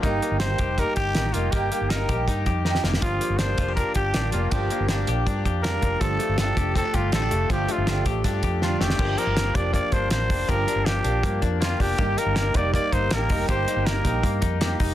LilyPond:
<<
  \new Staff \with { instrumentName = "Trumpet" } { \time 4/4 \key g \minor \tempo 4 = 161 ees'4 c''4 bes'8 g'4 f'8 | g'4 bes'4 r2 | f'4 c''4 bes'8 g'4 f'8 | g'4 g'4 r4 bes'4 |
a'4 a'4 a'8 f'8 a'4 | g'8 f'4 r4. f'8 g'8~ | g'8 bes'4 d''8 d''8 c''8 c''4 | bes'4 g'4. r8 f'8 g'8~ |
g'8 bes'4 d''8 d''8 c''8 bes'4 | c''4 bes'4. r8 g'8 r8 | }
  \new Staff \with { instrumentName = "Clean electric guitar" } { \time 4/4 \key g \minor bes8 bes8 ees'8 g'8 ees'8 g'8 ees'8 bes8 | bes8 bes8 ees'8 g'8 ees'8 g'8 ees'8 bes8 | f8 bes8 d'8 f'16 g'16 d'8 g'8 d'8 bes8 | f8 bes8 d'8 g'8 d'8 g'8 d'8 bes8 |
f8 a8 d'8 g'8 c'16 d'16 g'8 c'16 d'16 a8 | f8 a8 d'8 g'8 d'8 g'8 d'8 a8 | <f g'>8 c'16 d'16 bes8 d'8 bes8 d'8 bes8 d'8 | <f g'>8 d'8 bes8 d'8 bes8 d'8 bes8 d'8 |
<bes g'>8 ees'8 bes8 ees'8 bes8 ees'8 bes8 ees'8 | <bes g'>8 ees'8 bes8 ees'8 bes8 ees'8 bes8 ees'8 | }
  \new Staff \with { instrumentName = "Twelve-string acoustic guitar" } { \time 4/4 \key g \minor <g, ees g bes ees' g'>8 <g bes ees' g'>8 <g, ees g bes ees' g'>8 <g bes ees'>8 <g bes ees' g'>4 <g, ees g bes ees' g'>8 <g bes ees' g'>8 | <g, ees g bes ees' g'>8 <g bes ees' g'>8 <g, ees g bes ees' g'>8 <g bes ees' g'>8 <g bes ees' g'>4 <g, ees g bes ees' g'>8 <g bes ees' g'>8 | <g, d f bes d' g'>8 <f bes d' g'>8 <g, d f bes d' g'>8 <f bes d' g'>8 <f bes d' g'>4 <g, d f bes d' g'>8 <f bes d' g'>8 | <g, d f bes d' g'>8 <f bes d' g'>8 <g, d f bes d' g'>8 <f bes d' g'>8 <f bes d' g'>4 <g, d f bes d' g'>8 <f bes d' g'>8 |
<g, d a d' f' g'>8 <a d' f' g'>8 <g, d a d' f' g'>8 <a d' f' g'>8 <a d' f' g'>4 <g, d a d' f' g'>8 <a d' f' g'>8 | <g, d a d' f' g'>8 <a d' f' g'>8 <g, d a d' f' g'>8 <a d' f' g'>8 <a d' f' g'>4 <g, d a d' f' g'>8 <a d' f' g'>8 | <g, d f bes d' g'>8 <f bes d' g'>8 <f bes d' g'>8 <f bes d' g'>4. <f bes d' g'>8 <f bes d' g'>8 | <g, d f bes d' g'>8 <f bes d' g'>8 <f bes d' g'>8 <f bes d' g'>4. <f bes d' g'>8 <f bes d' g'>8 |
<g, ees g bes ees' g'>8 <g bes ees' g'>8 <g bes ees' g'>8 <g bes ees' g'>4. <g bes ees' g'>8 <g bes ees' g'>8 | <g, ees g bes ees' g'>8 <g bes ees' g'>8 <g bes ees' g'>8 <g bes ees' g'>4. <g bes ees' g'>8 <g bes ees' g'>8 | }
  \new Staff \with { instrumentName = "Fingered electric bass" } { \clef bass \time 4/4 \key g \minor g,,8 r16 g,,8. f,,8. r16 g,,8 a,,8 f,,8 | g,,8 r16 g,,8. bes,,8 g,8 f,4 f,,8 | g,,8 r16 g,,8. f,,8. r16 g,,8 a,,8 f,,8 | g,,8 r16 g,,8. bes,,8 g,8 f,4 f,,8 |
g,,8 r16 g,,8. f,,8. r16 g,,8 a,,8 f,,8 | g,,8 r16 g,,8. a,,8 g,8 f,4 f,,8 | g,,8 r16 g,,8. f,,8. r16 g,,8 a,,8 r8 | g,,8 r16 g,,8. bes,,8 g,8 f,4 f,,8 |
g,,8 r16 g,,8. f,,8. r16 g,,8 a,,8 f,,8 | g,,8 r16 g,,8. bes,,8 g,8 f,4 f,,8 | }
  \new DrumStaff \with { instrumentName = "Drums" } \drummode { \time 4/4 <hh bd>8 hh8 <hh sn>8 <hh bd>8 <hh bd>8 <hh bd>8 <hh sn>8 hh8 | <hh bd>8 hh8 <hh sn>8 <hh bd>8 <hh bd>8 <hh bd>8 sn16 sn16 sn16 sn16 | <hh bd>8 hh8 <hh sn>8 <hh bd>8 <hh bd>8 <hh bd>8 <hh sn>8 hh8 | <hh bd>8 hh8 <hh sn>8 hh8 <hh bd>8 <hh bd>8 <hh sn>8 <hh bd>8 |
<hh bd>8 hh8 <hh sn>8 <hh bd>8 <hh bd>8 <hh bd>8 <hh sn>8 hh8 | <hh bd>8 hh8 <hh sn>8 <hh bd>8 <hh bd>8 <hh bd>8 sn8 sn16 sn16 | <cymc bd>8 hh8 <hh sn>8 <hh bd>8 <hh bd>8 <hh bd>8 <hh sn>8 <hho bd>8 | <hh bd>8 hh8 <hh sn>8 hh8 <hh bd>8 <hh bd>8 <hh sn>8 <hho bd>8 |
<hh bd>8 hh8 <hh sn>8 <hh bd>8 <hh bd>8 <hh bd>8 <hh sn>8 <hho bd>8 | <hh bd>8 hh8 <hh sn>8 <hh bd>8 <hh bd>8 <hh bd>8 <hh sn>8 <hho bd>8 | }
>>